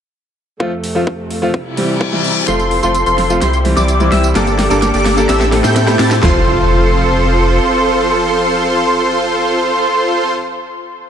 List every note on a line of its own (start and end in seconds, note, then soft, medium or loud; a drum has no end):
0.60 1.53 F2 medium
0.60 1.53 C3 medium
0.60 0.70 F3 medium
0.60 0.70 A3 medium
0.60 1.53 A3 medium
0.60 0.71 C4 medium
0.60 0.71 F4 medium
0.60 kick loud
0.84 open hi-hat loud
0.95 1.02 F3 medium
0.95 1.02 A3 medium
0.95 1.02 C4 medium
0.95 1.02 F4 loud
1.07 kick loud
1.30 open hi-hat medium
1.42 1.48 F3 medium
1.42 1.49 A3 medium
1.42 1.49 C4 medium
1.42 1.49 F4 loud
1.54 2.47 C3 medium
1.54 2.47 G3 medium
1.54 2.47 E4 medium
1.54 kick loud
1.54 reverse cymbal medium
1.77 2.09 E3 medium
1.77 2.10 G3 medium
1.77 2.10 C4 medium
1.77 2.10 G4 medium
1.77 open hi-hat medium
2.01 kick loud
2.12 2.45 E3 medium
2.12 2.45 G3 medium
2.12 2.45 C4 medium
2.12 2.45 E4 medium
2.24 open hi-hat medium
2.47 2.81 F1 loud
2.47 2.58 F3 medium
2.47 3.40 F3 medium
2.47 2.58 A3 medium
2.47 3.40 C4 medium
2.47 2.58 C4 medium
2.47 2.80 F4 medium
2.47 2.58 F4 medium
2.47 3.40 A4 medium
2.47 2.80 A4 medium
2.47 2.80 C5 medium
2.47 2.80 C6 loud
2.47 snare soft
2.47 closed hi-hat medium
2.47 tambourine medium
2.47 riser medium
2.59 closed hi-hat soft
2.59 tambourine soft
2.71 open hi-hat loud
2.82 3.04 F1 medium
2.82 2.89 F3 loud
2.82 2.89 A3 medium
2.82 2.89 C4 medium
2.82 3.03 F4 medium
2.82 2.90 F4 loud
2.82 3.03 A4 medium
2.82 3.03 C5 loud
2.82 3.03 C6 loud
2.82 closed hi-hat soft
2.82 tambourine medium
2.95 closed hi-hat medium
2.95 tambourine medium
3.06 3.39 F1 medium
3.06 3.39 F4 medium
3.06 3.39 A4 medium
3.06 3.39 C5 loud
3.06 3.39 C6 loud
3.06 closed hi-hat soft
3.06 tambourine soft
3.18 snare medium
3.18 open hi-hat medium
3.29 3.36 F3 loud
3.29 3.36 A3 medium
3.29 3.36 C4 medium
3.29 3.37 F4 loud
3.29 closed hi-hat soft
3.29 tambourine medium
3.41 3.74 C2 medium
3.41 4.34 C3 medium
3.41 4.34 G3 medium
3.41 3.57 E4 medium
3.41 4.34 E4 medium
3.41 3.57 G4 medium
3.41 3.57 C5 loud
3.41 3.57 C6 loud
3.41 snare medium
3.41 closed hi-hat medium
3.41 tambourine medium
3.53 closed hi-hat soft
3.53 tambourine soft
3.64 3.97 E3 medium
3.64 3.97 G3 medium
3.64 3.97 C4 medium
3.64 3.98 G4 medium
3.64 open hi-hat loud
3.77 4.09 C2 medium
3.77 4.09 E4 loud
3.77 4.09 G4 medium
3.77 4.09 D5 loud
3.77 4.09 D6 loud
3.77 snare medium
3.77 closed hi-hat soft
3.77 tambourine medium
3.88 closed hi-hat loud
3.88 tambourine medium
3.99 4.32 E3 medium
3.99 4.32 G3 medium
3.99 4.32 C4 medium
3.99 4.33 E4 loud
3.99 closed hi-hat soft
3.99 tambourine soft
4.12 4.33 C2 loud
4.12 4.28 E4 medium
4.12 4.28 G4 medium
4.12 4.28 E5 medium
4.12 4.28 E6 loud
4.12 snare medium
4.12 open hi-hat medium
4.24 closed hi-hat soft
4.24 tambourine medium
4.35 4.68 G1 medium
4.35 4.45 G2 medium
4.35 4.45 A#3 medium
4.35 4.68 A#3 medium
4.35 5.28 A#3 medium
4.35 4.68 D4 medium
4.35 4.46 D4 medium
4.35 4.68 G4 medium
4.35 6.21 G4 medium
4.35 4.46 G4 medium
4.35 4.68 A4 medium
4.35 6.21 A4 medium
4.35 4.46 A4 loud
4.35 4.68 D5 medium
4.35 4.68 D6 medium
4.35 snare medium
4.35 closed hi-hat medium
4.35 tambourine medium
4.47 closed hi-hat soft
4.47 tambourine soft
4.59 snare medium
4.59 open hi-hat loud
4.70 4.91 G1 loud
4.70 4.77 G2 loud
4.70 4.77 A#3 medium
4.70 4.91 A#3 loud
4.70 4.91 D4 medium
4.70 4.77 D4 medium
4.70 4.91 G4 medium
4.70 4.77 G4 medium
4.70 4.91 A4 medium
4.70 4.77 A4 loud
4.70 4.91 D5 loud
4.70 4.91 D6 loud
4.70 closed hi-hat soft
4.70 tambourine medium
4.82 snare medium
4.82 closed hi-hat medium
4.82 tambourine medium
4.94 5.27 G1 loud
4.94 5.26 A#3 medium
4.94 5.26 D4 medium
4.94 5.26 G4 medium
4.94 5.26 A4 medium
4.94 5.26 D5 loud
4.94 5.26 D6 loud
4.94 closed hi-hat soft
4.94 tambourine soft
5.06 snare medium
5.06 open hi-hat loud
5.17 5.23 A#3 loud
5.17 5.24 D4 medium
5.17 5.24 G4 medium
5.17 5.24 A4 loud
5.17 closed hi-hat soft
5.17 tambourine medium
5.29 5.62 A1 loud
5.29 5.45 C4 medium
5.29 6.21 C4 medium
5.29 5.45 E4 medium
5.29 5.45 G4 medium
5.29 5.45 A4 medium
5.29 5.45 E5 loud
5.29 5.45 E6 loud
5.29 snare medium
5.29 closed hi-hat loud
5.29 tambourine medium
5.41 snare medium
5.41 closed hi-hat soft
5.41 tambourine soft
5.52 5.84 A2 medium
5.52 5.85 A3 medium
5.52 5.85 C4 medium
5.52 5.85 E4 medium
5.52 5.85 A4 medium
5.52 snare medium
5.52 open hi-hat loud
5.64 5.97 A2 medium
5.64 5.96 C4 loud
5.64 5.96 E4 medium
5.64 5.96 G4 medium
5.64 5.96 A4 medium
5.64 5.96 G5 loud
5.64 5.96 G6 loud
5.64 snare medium
5.64 closed hi-hat soft
5.64 tambourine medium
5.76 snare loud
5.76 closed hi-hat loud
5.76 tambourine medium
5.87 6.20 A2 medium
5.87 6.20 A3 medium
5.87 6.20 C4 medium
5.87 6.20 E4 medium
5.87 6.20 G4 loud
5.87 snare medium
5.87 closed hi-hat soft
5.87 tambourine soft
5.99 6.20 A2 loud
5.99 6.15 C4 medium
5.99 6.15 E4 medium
5.99 6.15 G4 medium
5.99 6.15 A4 medium
5.99 6.15 A5 medium
5.99 6.15 A6 loud
5.99 snare loud
5.99 open hi-hat loud
6.11 snare loud
6.11 closed hi-hat soft
6.11 tambourine medium
6.21 7.59 F1 loud
6.21 10.31 F3 medium
6.21 10.32 F3 medium
6.21 10.32 A3 medium
6.21 10.32 C4 medium
6.21 10.33 C4 medium
6.21 10.32 F4 medium
6.21 10.34 F4 loud
6.21 10.32 A4 medium
6.21 10.32 C5 loud
6.21 10.32 C6 loud
6.21 snare loud
6.21 clap medium
6.21 floor tom loud
6.21 impact medium